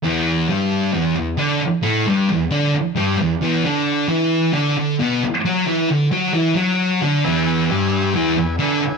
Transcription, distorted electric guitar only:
\new Staff \with { instrumentName = "Distorted electric guitar" } { \clef bass \time 4/4 \key b \dorian \tempo 4 = 133 <e, e>4 <g, g>4 <e, e>8 e,8 <d d'>8 r8 | <a, a>8 <g, g>8 e,8 <d d'>8 r8 <g, g>8 e,8 <e, e>8 | <d d'>4 <e e'>4 <d d'>8 d8 <b, b>8 r8 | <fis fis'>8 <e e'>8 d8 <fis fis'>8 <e e'>8 <fis fis'>4 <d d'>8 |
<e, e>4 <g, g>4 <e, e>8 e,8 <d d'>8 r8 | }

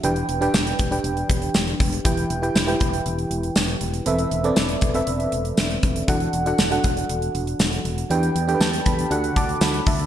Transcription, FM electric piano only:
<<
  \new Staff \with { instrumentName = "FM electric piano" } { \time 4/4 \key g \major \tempo 4 = 119 << { r1 | r1 | r1 | r1 |
r4 a''8 b''4 <a'' d'''>8 <fis'' b''>8 <e'' a''>8 | } \\ { <d' g' b' g''>8. <d' g' b' g''>4 <d' g' b' g''>4.~ <d' g' b' g''>16 r8 | <e' g' b' g''>8. <e' g' b' g''>8 <e' g' b' g''>4.~ <e' g' b' g''>16 r4 | <c' a' b' e''>8. <c' a' b' d''>4 <c' a' b' e''>4.~ <c' a' b' e''>16 r8 | <d' fis' a' fis''>8. <d' fis' a' fis''>8 <d' fis' a' fis''>4.~ <d' fis' a' fis''>16 r4 |
<d' g' b' g''>8. <d' g' a' b' g''>4 r16 <d' fis' a' fis''>4.~ <d' fis' a' fis''>16 r16 | } >> }
  \new Staff \with { instrumentName = "FM electric piano" } { \clef bass \time 4/4 \key g \major e4. r2 r8 | e4. r2 r8 | e4. r2 r8 | e4. r2 r8 |
e4. r8 d4. r8 | }
>>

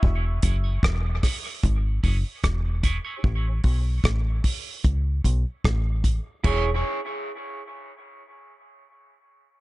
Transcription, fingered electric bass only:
\new Staff \with { instrumentName = "Fingered electric bass" } { \clef bass \time 4/4 \key e \major \tempo 4 = 75 e,,8 fis,,8 e,,8 r8 gis,,8 fis,,16 r16 e,,8. r16 | a,,8 b,,8 a,,8 r8 cis,8 b,,16 r16 a,,8. r16 | e,,8 r2. r8 | }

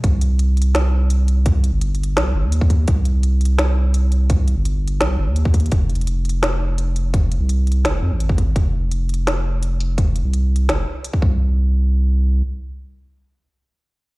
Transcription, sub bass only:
\new Staff \with { instrumentName = "Sub bass" } { \clef bass \time 4/4 \key f \dorian \tempo 4 = 169 c,1~ | c,8. g,,4~ g,,16 c,8 g,,16 ees,4~ ees,16 | c,1~ | c,8. g,,4~ g,,16 c,8 g,,16 ees,4~ ees,16 |
f,,1~ | f,,8. c,4~ c,16 f,,8 f,16 aes,,4~ aes,,16 | f,,1~ | f,,8. c,4~ c,16 f,,8 r4 c,8~ |
c,2. r4 | r1 | }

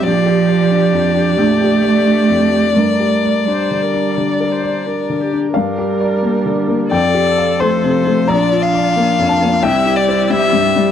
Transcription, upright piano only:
\new Staff \with { instrumentName = "Upright piano" } { \time 4/4 \key g \dorian \tempo 4 = 88 << { r1 | r1 | f''2 g''4 c'''4 | bes''4. a''8 g''2 | } \\ { \tuplet 3/2 { bes,,8 g'8 d''8 d'8 f,8 d'8 bes,,8 g'8 d''8 d'8 f,8 d'8 } | \tuplet 3/2 { g,8 g'8 d''8 d'8 d8 d'8 d8 bes'8 d''8 d'8 d8 d'8 } | \tuplet 3/2 { g,8 g'8 d''8 bes8 d8 bes8 f,8 g'8 f''8 a8 c8 a8 } | \tuplet 3/2 { bes,,8 f'8 d''8 bes8 f,8 bes8 c,8 e'8 c''8 g8 g,8 g8 } | } >> }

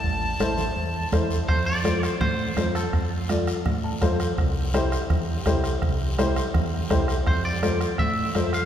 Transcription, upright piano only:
\new Staff \with { instrumentName = "Upright piano" } { \time 4/4 \key f \lydian \tempo 4 = 166 << { r1 | r1 | r2 r8 a''8 f''4 | r1 |
r1 | r1 | } \\ { r4 <e' a' c''>8 r4. <e' a' c''>8 r8 | r4 <f' a' c''>8 r4. <f' a' c''>8 r8 | r4 <f' a' d''>8 r4. <f' a' c''>8 r8 | r4 <e' g' c''>8 r4. <e' g' c''>8 r8 |
r4 <e' g' c''>8 r4. <e' g' c''>8 r8 | r4 <f' a' c''>8 r4. <f' a' c''>8 r8 | } >> }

